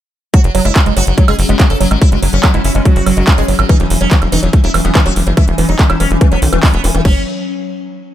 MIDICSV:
0, 0, Header, 1, 7, 480
1, 0, Start_track
1, 0, Tempo, 419580
1, 386, Time_signature, 4, 2, 24, 8
1, 9317, End_track
2, 0, Start_track
2, 0, Title_t, "Wobble bass"
2, 0, Program_c, 0, 39
2, 1705, Note_on_c, 0, 59, 92
2, 1782, Note_off_c, 0, 59, 0
2, 1825, Note_on_c, 0, 59, 75
2, 1902, Note_off_c, 0, 59, 0
2, 2905, Note_on_c, 0, 64, 95
2, 3001, Note_off_c, 0, 64, 0
2, 3025, Note_on_c, 0, 61, 90
2, 3102, Note_off_c, 0, 61, 0
2, 3145, Note_on_c, 0, 61, 79
2, 3222, Note_off_c, 0, 61, 0
2, 3265, Note_on_c, 0, 66, 94
2, 3745, Note_off_c, 0, 66, 0
2, 5545, Note_on_c, 0, 59, 95
2, 5622, Note_off_c, 0, 59, 0
2, 5665, Note_on_c, 0, 59, 79
2, 5742, Note_off_c, 0, 59, 0
2, 6745, Note_on_c, 0, 64, 95
2, 6841, Note_off_c, 0, 64, 0
2, 9317, End_track
3, 0, Start_track
3, 0, Title_t, "Synth texture"
3, 0, Program_c, 1, 99
3, 385, Note_on_c, 1, 54, 73
3, 385, Note_on_c, 1, 61, 73
3, 8113, Note_off_c, 1, 54, 0
3, 8113, Note_off_c, 1, 61, 0
3, 9317, End_track
4, 0, Start_track
4, 0, Title_t, "Sitar"
4, 0, Program_c, 2, 104
4, 386, Note_on_c, 2, 66, 100
4, 464, Note_off_c, 2, 66, 0
4, 505, Note_on_c, 2, 54, 68
4, 584, Note_off_c, 2, 54, 0
4, 625, Note_on_c, 2, 54, 65
4, 704, Note_off_c, 2, 54, 0
4, 746, Note_on_c, 2, 64, 95
4, 824, Note_off_c, 2, 64, 0
4, 986, Note_on_c, 2, 54, 63
4, 1064, Note_off_c, 2, 54, 0
4, 1106, Note_on_c, 2, 66, 95
4, 1184, Note_off_c, 2, 66, 0
4, 1226, Note_on_c, 2, 54, 65
4, 1304, Note_off_c, 2, 54, 0
4, 1346, Note_on_c, 2, 54, 64
4, 1425, Note_off_c, 2, 54, 0
4, 1466, Note_on_c, 2, 68, 96
4, 1544, Note_off_c, 2, 68, 0
4, 1586, Note_on_c, 2, 54, 66
4, 1664, Note_off_c, 2, 54, 0
4, 1706, Note_on_c, 2, 54, 65
4, 1784, Note_off_c, 2, 54, 0
4, 1945, Note_on_c, 2, 69, 94
4, 2024, Note_off_c, 2, 69, 0
4, 2066, Note_on_c, 2, 54, 65
4, 2144, Note_off_c, 2, 54, 0
4, 2186, Note_on_c, 2, 54, 66
4, 2265, Note_off_c, 2, 54, 0
4, 2306, Note_on_c, 2, 64, 99
4, 2385, Note_off_c, 2, 64, 0
4, 2426, Note_on_c, 2, 54, 67
4, 2505, Note_off_c, 2, 54, 0
4, 2546, Note_on_c, 2, 54, 66
4, 2625, Note_off_c, 2, 54, 0
4, 2666, Note_on_c, 2, 61, 93
4, 2745, Note_off_c, 2, 61, 0
4, 2906, Note_on_c, 2, 54, 64
4, 2985, Note_off_c, 2, 54, 0
4, 3026, Note_on_c, 2, 64, 95
4, 3105, Note_off_c, 2, 64, 0
4, 3146, Note_on_c, 2, 54, 67
4, 3225, Note_off_c, 2, 54, 0
4, 3266, Note_on_c, 2, 54, 65
4, 3344, Note_off_c, 2, 54, 0
4, 3385, Note_on_c, 2, 66, 94
4, 3464, Note_off_c, 2, 66, 0
4, 3506, Note_on_c, 2, 54, 66
4, 3584, Note_off_c, 2, 54, 0
4, 3625, Note_on_c, 2, 54, 64
4, 3704, Note_off_c, 2, 54, 0
4, 3745, Note_on_c, 2, 54, 66
4, 3824, Note_off_c, 2, 54, 0
4, 3866, Note_on_c, 2, 68, 92
4, 3944, Note_off_c, 2, 68, 0
4, 3986, Note_on_c, 2, 54, 67
4, 4064, Note_off_c, 2, 54, 0
4, 4106, Note_on_c, 2, 54, 64
4, 4185, Note_off_c, 2, 54, 0
4, 4226, Note_on_c, 2, 63, 102
4, 4304, Note_off_c, 2, 63, 0
4, 4345, Note_on_c, 2, 52, 67
4, 4424, Note_off_c, 2, 52, 0
4, 4465, Note_on_c, 2, 52, 64
4, 4544, Note_off_c, 2, 52, 0
4, 4585, Note_on_c, 2, 61, 96
4, 4664, Note_off_c, 2, 61, 0
4, 4705, Note_on_c, 2, 52, 66
4, 4784, Note_off_c, 2, 52, 0
4, 4826, Note_on_c, 2, 52, 65
4, 4904, Note_off_c, 2, 52, 0
4, 4945, Note_on_c, 2, 63, 99
4, 5024, Note_off_c, 2, 63, 0
4, 5065, Note_on_c, 2, 52, 66
4, 5144, Note_off_c, 2, 52, 0
4, 5185, Note_on_c, 2, 52, 65
4, 5264, Note_off_c, 2, 52, 0
4, 5305, Note_on_c, 2, 64, 98
4, 5384, Note_off_c, 2, 64, 0
4, 5426, Note_on_c, 2, 52, 67
4, 5504, Note_off_c, 2, 52, 0
4, 5546, Note_on_c, 2, 52, 65
4, 5624, Note_off_c, 2, 52, 0
4, 5665, Note_on_c, 2, 52, 67
4, 5744, Note_off_c, 2, 52, 0
4, 5785, Note_on_c, 2, 66, 98
4, 5864, Note_off_c, 2, 66, 0
4, 5905, Note_on_c, 2, 52, 66
4, 5984, Note_off_c, 2, 52, 0
4, 6025, Note_on_c, 2, 52, 67
4, 6104, Note_off_c, 2, 52, 0
4, 6145, Note_on_c, 2, 64, 103
4, 6224, Note_off_c, 2, 64, 0
4, 6265, Note_on_c, 2, 52, 66
4, 6344, Note_off_c, 2, 52, 0
4, 6385, Note_on_c, 2, 52, 66
4, 6464, Note_off_c, 2, 52, 0
4, 6505, Note_on_c, 2, 63, 95
4, 6584, Note_off_c, 2, 63, 0
4, 6625, Note_on_c, 2, 52, 64
4, 6704, Note_off_c, 2, 52, 0
4, 6745, Note_on_c, 2, 52, 67
4, 6824, Note_off_c, 2, 52, 0
4, 6865, Note_on_c, 2, 61, 96
4, 6944, Note_off_c, 2, 61, 0
4, 6985, Note_on_c, 2, 52, 68
4, 7064, Note_off_c, 2, 52, 0
4, 7105, Note_on_c, 2, 52, 66
4, 7184, Note_off_c, 2, 52, 0
4, 7225, Note_on_c, 2, 59, 98
4, 7304, Note_off_c, 2, 59, 0
4, 7346, Note_on_c, 2, 52, 65
4, 7424, Note_off_c, 2, 52, 0
4, 7465, Note_on_c, 2, 52, 65
4, 7544, Note_off_c, 2, 52, 0
4, 7585, Note_on_c, 2, 52, 65
4, 7664, Note_off_c, 2, 52, 0
4, 7705, Note_on_c, 2, 59, 93
4, 7784, Note_off_c, 2, 59, 0
4, 7826, Note_on_c, 2, 52, 67
4, 7904, Note_off_c, 2, 52, 0
4, 7946, Note_on_c, 2, 52, 68
4, 8024, Note_off_c, 2, 52, 0
4, 8066, Note_on_c, 2, 61, 93
4, 8244, Note_off_c, 2, 61, 0
4, 9317, End_track
5, 0, Start_track
5, 0, Title_t, "Synth arpeggio sound"
5, 0, Program_c, 3, 84
5, 385, Note_on_c, 3, 54, 83
5, 422, Note_off_c, 3, 54, 0
5, 626, Note_on_c, 3, 54, 104
5, 686, Note_off_c, 3, 54, 0
5, 746, Note_on_c, 3, 56, 79
5, 782, Note_off_c, 3, 56, 0
5, 986, Note_on_c, 3, 56, 77
5, 1046, Note_off_c, 3, 56, 0
5, 1106, Note_on_c, 3, 54, 78
5, 1142, Note_off_c, 3, 54, 0
5, 1346, Note_on_c, 3, 54, 106
5, 1406, Note_off_c, 3, 54, 0
5, 1466, Note_on_c, 3, 56, 77
5, 1502, Note_off_c, 3, 56, 0
5, 1706, Note_on_c, 3, 56, 80
5, 1766, Note_off_c, 3, 56, 0
5, 1826, Note_on_c, 3, 54, 83
5, 1862, Note_off_c, 3, 54, 0
5, 2065, Note_on_c, 3, 54, 105
5, 2126, Note_off_c, 3, 54, 0
5, 2186, Note_on_c, 3, 56, 78
5, 2222, Note_off_c, 3, 56, 0
5, 2426, Note_on_c, 3, 56, 76
5, 2486, Note_off_c, 3, 56, 0
5, 2546, Note_on_c, 3, 54, 79
5, 2582, Note_off_c, 3, 54, 0
5, 2786, Note_on_c, 3, 54, 103
5, 2846, Note_off_c, 3, 54, 0
5, 2906, Note_on_c, 3, 56, 80
5, 2942, Note_off_c, 3, 56, 0
5, 3146, Note_on_c, 3, 56, 76
5, 3206, Note_off_c, 3, 56, 0
5, 3266, Note_on_c, 3, 54, 88
5, 3302, Note_off_c, 3, 54, 0
5, 3506, Note_on_c, 3, 54, 100
5, 3566, Note_off_c, 3, 54, 0
5, 3626, Note_on_c, 3, 56, 79
5, 3662, Note_off_c, 3, 56, 0
5, 3866, Note_on_c, 3, 56, 79
5, 3926, Note_off_c, 3, 56, 0
5, 3986, Note_on_c, 3, 54, 82
5, 4022, Note_off_c, 3, 54, 0
5, 4226, Note_on_c, 3, 52, 105
5, 4286, Note_off_c, 3, 52, 0
5, 4346, Note_on_c, 3, 54, 78
5, 4382, Note_off_c, 3, 54, 0
5, 4586, Note_on_c, 3, 54, 79
5, 4646, Note_off_c, 3, 54, 0
5, 4706, Note_on_c, 3, 52, 84
5, 4742, Note_off_c, 3, 52, 0
5, 4945, Note_on_c, 3, 52, 103
5, 5006, Note_off_c, 3, 52, 0
5, 5066, Note_on_c, 3, 54, 80
5, 5102, Note_off_c, 3, 54, 0
5, 5305, Note_on_c, 3, 54, 77
5, 5366, Note_off_c, 3, 54, 0
5, 5426, Note_on_c, 3, 52, 79
5, 5462, Note_off_c, 3, 52, 0
5, 5666, Note_on_c, 3, 52, 106
5, 5726, Note_off_c, 3, 52, 0
5, 5786, Note_on_c, 3, 54, 82
5, 5822, Note_off_c, 3, 54, 0
5, 6025, Note_on_c, 3, 54, 74
5, 6086, Note_off_c, 3, 54, 0
5, 6146, Note_on_c, 3, 52, 87
5, 6182, Note_off_c, 3, 52, 0
5, 6385, Note_on_c, 3, 52, 101
5, 6446, Note_off_c, 3, 52, 0
5, 6505, Note_on_c, 3, 54, 80
5, 6542, Note_off_c, 3, 54, 0
5, 6745, Note_on_c, 3, 54, 80
5, 6806, Note_off_c, 3, 54, 0
5, 6865, Note_on_c, 3, 52, 78
5, 6902, Note_off_c, 3, 52, 0
5, 7106, Note_on_c, 3, 52, 106
5, 7166, Note_off_c, 3, 52, 0
5, 7225, Note_on_c, 3, 54, 75
5, 7262, Note_off_c, 3, 54, 0
5, 7346, Note_on_c, 3, 51, 79
5, 7436, Note_off_c, 3, 51, 0
5, 7466, Note_on_c, 3, 52, 104
5, 7526, Note_off_c, 3, 52, 0
5, 7586, Note_on_c, 3, 56, 84
5, 7646, Note_off_c, 3, 56, 0
5, 7826, Note_on_c, 3, 52, 78
5, 7886, Note_off_c, 3, 52, 0
5, 7946, Note_on_c, 3, 52, 75
5, 8036, Note_off_c, 3, 52, 0
5, 8066, Note_on_c, 3, 54, 97
5, 8289, Note_off_c, 3, 54, 0
5, 9317, End_track
6, 0, Start_track
6, 0, Title_t, "Analog synth bass"
6, 0, Program_c, 4, 38
6, 506, Note_on_c, 4, 30, 85
6, 576, Note_off_c, 4, 30, 0
6, 625, Note_on_c, 4, 30, 100
6, 696, Note_off_c, 4, 30, 0
6, 746, Note_on_c, 4, 30, 96
6, 816, Note_off_c, 4, 30, 0
6, 986, Note_on_c, 4, 30, 88
6, 1056, Note_off_c, 4, 30, 0
6, 1106, Note_on_c, 4, 30, 99
6, 1176, Note_off_c, 4, 30, 0
6, 1226, Note_on_c, 4, 30, 94
6, 1296, Note_off_c, 4, 30, 0
6, 1466, Note_on_c, 4, 30, 94
6, 1536, Note_off_c, 4, 30, 0
6, 1586, Note_on_c, 4, 30, 101
6, 1657, Note_off_c, 4, 30, 0
6, 1706, Note_on_c, 4, 30, 91
6, 1777, Note_off_c, 4, 30, 0
6, 1946, Note_on_c, 4, 30, 89
6, 2016, Note_off_c, 4, 30, 0
6, 2066, Note_on_c, 4, 30, 102
6, 2136, Note_off_c, 4, 30, 0
6, 2186, Note_on_c, 4, 32, 93
6, 2256, Note_off_c, 4, 32, 0
6, 2426, Note_on_c, 4, 30, 87
6, 2496, Note_off_c, 4, 30, 0
6, 2545, Note_on_c, 4, 30, 98
6, 2616, Note_off_c, 4, 30, 0
6, 2666, Note_on_c, 4, 30, 93
6, 2736, Note_off_c, 4, 30, 0
6, 2906, Note_on_c, 4, 30, 90
6, 2976, Note_off_c, 4, 30, 0
6, 3026, Note_on_c, 4, 30, 100
6, 3096, Note_off_c, 4, 30, 0
6, 3146, Note_on_c, 4, 30, 96
6, 3216, Note_off_c, 4, 30, 0
6, 3386, Note_on_c, 4, 30, 93
6, 3456, Note_off_c, 4, 30, 0
6, 3506, Note_on_c, 4, 30, 97
6, 3576, Note_off_c, 4, 30, 0
6, 3626, Note_on_c, 4, 30, 96
6, 3696, Note_off_c, 4, 30, 0
6, 3866, Note_on_c, 4, 30, 86
6, 3936, Note_off_c, 4, 30, 0
6, 3986, Note_on_c, 4, 30, 97
6, 4057, Note_off_c, 4, 30, 0
6, 4106, Note_on_c, 4, 32, 93
6, 4176, Note_off_c, 4, 32, 0
6, 4345, Note_on_c, 4, 28, 86
6, 4416, Note_off_c, 4, 28, 0
6, 4465, Note_on_c, 4, 28, 96
6, 4536, Note_off_c, 4, 28, 0
6, 4585, Note_on_c, 4, 28, 92
6, 4656, Note_off_c, 4, 28, 0
6, 4825, Note_on_c, 4, 28, 90
6, 4896, Note_off_c, 4, 28, 0
6, 4945, Note_on_c, 4, 28, 100
6, 5016, Note_off_c, 4, 28, 0
6, 5066, Note_on_c, 4, 28, 97
6, 5136, Note_off_c, 4, 28, 0
6, 5305, Note_on_c, 4, 28, 90
6, 5376, Note_off_c, 4, 28, 0
6, 5425, Note_on_c, 4, 28, 102
6, 5496, Note_off_c, 4, 28, 0
6, 5545, Note_on_c, 4, 28, 92
6, 5616, Note_off_c, 4, 28, 0
6, 5785, Note_on_c, 4, 28, 87
6, 5856, Note_off_c, 4, 28, 0
6, 5905, Note_on_c, 4, 28, 101
6, 5976, Note_off_c, 4, 28, 0
6, 6025, Note_on_c, 4, 30, 93
6, 6096, Note_off_c, 4, 30, 0
6, 6265, Note_on_c, 4, 28, 89
6, 6336, Note_off_c, 4, 28, 0
6, 6385, Note_on_c, 4, 28, 97
6, 6456, Note_off_c, 4, 28, 0
6, 6505, Note_on_c, 4, 28, 93
6, 6576, Note_off_c, 4, 28, 0
6, 6745, Note_on_c, 4, 28, 89
6, 6816, Note_off_c, 4, 28, 0
6, 6865, Note_on_c, 4, 28, 103
6, 6936, Note_off_c, 4, 28, 0
6, 6986, Note_on_c, 4, 28, 94
6, 7056, Note_off_c, 4, 28, 0
6, 7226, Note_on_c, 4, 28, 92
6, 7297, Note_off_c, 4, 28, 0
6, 7346, Note_on_c, 4, 35, 102
6, 7416, Note_off_c, 4, 35, 0
6, 7466, Note_on_c, 4, 28, 96
6, 7536, Note_off_c, 4, 28, 0
6, 7706, Note_on_c, 4, 28, 87
6, 7776, Note_off_c, 4, 28, 0
6, 7826, Note_on_c, 4, 28, 100
6, 7896, Note_off_c, 4, 28, 0
6, 7946, Note_on_c, 4, 28, 93
6, 8016, Note_off_c, 4, 28, 0
6, 8066, Note_on_c, 4, 30, 98
6, 8289, Note_off_c, 4, 30, 0
6, 9317, End_track
7, 0, Start_track
7, 0, Title_t, "Drums"
7, 386, Note_on_c, 9, 36, 122
7, 386, Note_on_c, 9, 42, 85
7, 500, Note_off_c, 9, 36, 0
7, 500, Note_off_c, 9, 42, 0
7, 505, Note_on_c, 9, 42, 56
7, 620, Note_off_c, 9, 42, 0
7, 626, Note_on_c, 9, 46, 106
7, 740, Note_off_c, 9, 46, 0
7, 746, Note_on_c, 9, 42, 55
7, 860, Note_off_c, 9, 42, 0
7, 865, Note_on_c, 9, 39, 127
7, 865, Note_on_c, 9, 42, 83
7, 865, Note_on_c, 9, 76, 38
7, 866, Note_on_c, 9, 36, 126
7, 980, Note_off_c, 9, 36, 0
7, 980, Note_off_c, 9, 39, 0
7, 980, Note_off_c, 9, 42, 0
7, 980, Note_off_c, 9, 76, 0
7, 986, Note_on_c, 9, 42, 54
7, 1100, Note_off_c, 9, 42, 0
7, 1105, Note_on_c, 9, 46, 104
7, 1220, Note_off_c, 9, 46, 0
7, 1226, Note_on_c, 9, 42, 55
7, 1340, Note_off_c, 9, 42, 0
7, 1346, Note_on_c, 9, 36, 117
7, 1346, Note_on_c, 9, 42, 84
7, 1460, Note_off_c, 9, 36, 0
7, 1460, Note_off_c, 9, 42, 0
7, 1466, Note_on_c, 9, 42, 55
7, 1466, Note_on_c, 9, 76, 78
7, 1580, Note_off_c, 9, 42, 0
7, 1580, Note_off_c, 9, 76, 0
7, 1586, Note_on_c, 9, 46, 110
7, 1700, Note_off_c, 9, 46, 0
7, 1706, Note_on_c, 9, 42, 56
7, 1820, Note_off_c, 9, 42, 0
7, 1826, Note_on_c, 9, 36, 126
7, 1826, Note_on_c, 9, 39, 122
7, 1826, Note_on_c, 9, 42, 82
7, 1940, Note_off_c, 9, 36, 0
7, 1940, Note_off_c, 9, 39, 0
7, 1940, Note_off_c, 9, 42, 0
7, 1946, Note_on_c, 9, 42, 55
7, 2060, Note_off_c, 9, 42, 0
7, 2066, Note_on_c, 9, 46, 109
7, 2180, Note_off_c, 9, 46, 0
7, 2186, Note_on_c, 9, 42, 55
7, 2186, Note_on_c, 9, 76, 37
7, 2300, Note_off_c, 9, 42, 0
7, 2300, Note_off_c, 9, 76, 0
7, 2306, Note_on_c, 9, 36, 125
7, 2306, Note_on_c, 9, 42, 83
7, 2420, Note_off_c, 9, 36, 0
7, 2420, Note_off_c, 9, 42, 0
7, 2426, Note_on_c, 9, 42, 53
7, 2540, Note_off_c, 9, 42, 0
7, 2546, Note_on_c, 9, 46, 113
7, 2660, Note_off_c, 9, 46, 0
7, 2666, Note_on_c, 9, 42, 53
7, 2780, Note_off_c, 9, 42, 0
7, 2785, Note_on_c, 9, 39, 127
7, 2785, Note_on_c, 9, 42, 83
7, 2785, Note_on_c, 9, 76, 77
7, 2786, Note_on_c, 9, 36, 127
7, 2900, Note_off_c, 9, 36, 0
7, 2900, Note_off_c, 9, 39, 0
7, 2900, Note_off_c, 9, 42, 0
7, 2900, Note_off_c, 9, 76, 0
7, 2906, Note_on_c, 9, 42, 52
7, 3020, Note_off_c, 9, 42, 0
7, 3026, Note_on_c, 9, 46, 110
7, 3140, Note_off_c, 9, 46, 0
7, 3146, Note_on_c, 9, 42, 55
7, 3260, Note_off_c, 9, 42, 0
7, 3266, Note_on_c, 9, 36, 121
7, 3266, Note_on_c, 9, 42, 83
7, 3380, Note_off_c, 9, 36, 0
7, 3380, Note_off_c, 9, 42, 0
7, 3386, Note_on_c, 9, 42, 55
7, 3500, Note_off_c, 9, 42, 0
7, 3506, Note_on_c, 9, 46, 111
7, 3506, Note_on_c, 9, 76, 39
7, 3620, Note_off_c, 9, 46, 0
7, 3620, Note_off_c, 9, 76, 0
7, 3626, Note_on_c, 9, 42, 56
7, 3740, Note_off_c, 9, 42, 0
7, 3746, Note_on_c, 9, 36, 127
7, 3746, Note_on_c, 9, 39, 127
7, 3746, Note_on_c, 9, 42, 82
7, 3860, Note_off_c, 9, 36, 0
7, 3860, Note_off_c, 9, 39, 0
7, 3860, Note_off_c, 9, 42, 0
7, 3865, Note_on_c, 9, 42, 55
7, 3980, Note_off_c, 9, 42, 0
7, 3986, Note_on_c, 9, 46, 109
7, 4100, Note_off_c, 9, 46, 0
7, 4106, Note_on_c, 9, 42, 51
7, 4106, Note_on_c, 9, 76, 78
7, 4220, Note_off_c, 9, 42, 0
7, 4220, Note_off_c, 9, 76, 0
7, 4225, Note_on_c, 9, 42, 80
7, 4226, Note_on_c, 9, 36, 127
7, 4340, Note_off_c, 9, 36, 0
7, 4340, Note_off_c, 9, 42, 0
7, 4345, Note_on_c, 9, 42, 51
7, 4460, Note_off_c, 9, 42, 0
7, 4465, Note_on_c, 9, 46, 116
7, 4580, Note_off_c, 9, 46, 0
7, 4585, Note_on_c, 9, 42, 51
7, 4700, Note_off_c, 9, 42, 0
7, 4705, Note_on_c, 9, 39, 123
7, 4705, Note_on_c, 9, 42, 81
7, 4706, Note_on_c, 9, 36, 127
7, 4819, Note_off_c, 9, 39, 0
7, 4819, Note_off_c, 9, 42, 0
7, 4820, Note_off_c, 9, 36, 0
7, 4825, Note_on_c, 9, 42, 51
7, 4825, Note_on_c, 9, 76, 38
7, 4940, Note_off_c, 9, 42, 0
7, 4940, Note_off_c, 9, 76, 0
7, 4945, Note_on_c, 9, 46, 115
7, 5060, Note_off_c, 9, 46, 0
7, 5066, Note_on_c, 9, 42, 51
7, 5180, Note_off_c, 9, 42, 0
7, 5185, Note_on_c, 9, 42, 77
7, 5186, Note_on_c, 9, 36, 122
7, 5300, Note_off_c, 9, 36, 0
7, 5300, Note_off_c, 9, 42, 0
7, 5306, Note_on_c, 9, 42, 53
7, 5420, Note_off_c, 9, 42, 0
7, 5425, Note_on_c, 9, 46, 111
7, 5425, Note_on_c, 9, 76, 77
7, 5540, Note_off_c, 9, 46, 0
7, 5540, Note_off_c, 9, 76, 0
7, 5546, Note_on_c, 9, 42, 52
7, 5660, Note_off_c, 9, 42, 0
7, 5665, Note_on_c, 9, 39, 124
7, 5665, Note_on_c, 9, 42, 79
7, 5666, Note_on_c, 9, 36, 127
7, 5780, Note_off_c, 9, 36, 0
7, 5780, Note_off_c, 9, 39, 0
7, 5780, Note_off_c, 9, 42, 0
7, 5785, Note_on_c, 9, 42, 54
7, 5900, Note_off_c, 9, 42, 0
7, 5905, Note_on_c, 9, 46, 113
7, 6020, Note_off_c, 9, 46, 0
7, 6025, Note_on_c, 9, 42, 51
7, 6140, Note_off_c, 9, 42, 0
7, 6145, Note_on_c, 9, 42, 77
7, 6145, Note_on_c, 9, 76, 41
7, 6146, Note_on_c, 9, 36, 127
7, 6260, Note_off_c, 9, 36, 0
7, 6260, Note_off_c, 9, 42, 0
7, 6260, Note_off_c, 9, 76, 0
7, 6265, Note_on_c, 9, 42, 52
7, 6379, Note_off_c, 9, 42, 0
7, 6385, Note_on_c, 9, 46, 115
7, 6500, Note_off_c, 9, 46, 0
7, 6505, Note_on_c, 9, 42, 51
7, 6620, Note_off_c, 9, 42, 0
7, 6626, Note_on_c, 9, 36, 127
7, 6626, Note_on_c, 9, 39, 121
7, 6626, Note_on_c, 9, 42, 79
7, 6740, Note_off_c, 9, 36, 0
7, 6740, Note_off_c, 9, 39, 0
7, 6740, Note_off_c, 9, 42, 0
7, 6745, Note_on_c, 9, 42, 49
7, 6745, Note_on_c, 9, 76, 77
7, 6860, Note_off_c, 9, 42, 0
7, 6860, Note_off_c, 9, 76, 0
7, 6865, Note_on_c, 9, 46, 112
7, 6980, Note_off_c, 9, 46, 0
7, 6985, Note_on_c, 9, 42, 51
7, 7100, Note_off_c, 9, 42, 0
7, 7106, Note_on_c, 9, 36, 125
7, 7106, Note_on_c, 9, 42, 76
7, 7220, Note_off_c, 9, 36, 0
7, 7220, Note_off_c, 9, 42, 0
7, 7226, Note_on_c, 9, 42, 50
7, 7340, Note_off_c, 9, 42, 0
7, 7346, Note_on_c, 9, 46, 114
7, 7460, Note_off_c, 9, 46, 0
7, 7466, Note_on_c, 9, 42, 52
7, 7466, Note_on_c, 9, 76, 42
7, 7580, Note_off_c, 9, 42, 0
7, 7580, Note_off_c, 9, 76, 0
7, 7586, Note_on_c, 9, 36, 127
7, 7586, Note_on_c, 9, 39, 119
7, 7586, Note_on_c, 9, 46, 67
7, 7700, Note_off_c, 9, 36, 0
7, 7700, Note_off_c, 9, 39, 0
7, 7700, Note_off_c, 9, 46, 0
7, 7706, Note_on_c, 9, 42, 52
7, 7820, Note_off_c, 9, 42, 0
7, 7826, Note_on_c, 9, 46, 115
7, 7940, Note_off_c, 9, 46, 0
7, 7946, Note_on_c, 9, 42, 50
7, 8060, Note_off_c, 9, 42, 0
7, 8066, Note_on_c, 9, 36, 117
7, 8066, Note_on_c, 9, 49, 92
7, 8180, Note_off_c, 9, 36, 0
7, 8180, Note_off_c, 9, 49, 0
7, 9317, End_track
0, 0, End_of_file